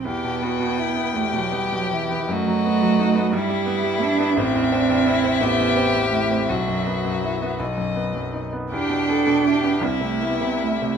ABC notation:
X:1
M:6/8
L:1/16
Q:3/8=55
K:Em
V:1 name="Violin"
g12 | ^d6 e6- | e12- | e6 ^d4 z2 |
g6 e6 |]
V:2 name="Violin"
G2 F2 E2 G6 | F6 E6 | C2 D2 E2 G6 | F8- F z3 |
G2 A2 G2 E6 |]
V:3 name="Cello"
B,6 A, F, G, F, E,2 | A,6 G,4 D2 | C6 B,4 A,2 | F,6 z6 |
D6 C A, B,2 A,2 |]
V:4 name="Grand piano" clef=bass
E,, B,, B, B,, E B, E,, B,, B, B,, E B, | F,, F, B, F, ^D B, G,, G, B, G, E B, | A,,, E,, C E,, E C A,,, E,, C E,, E C | B,,, F,, B, F,, E B, B,,, F,, B, F,, ^D B, |
E,, B,, B, B,, E B, C,, C, E C, E C, |]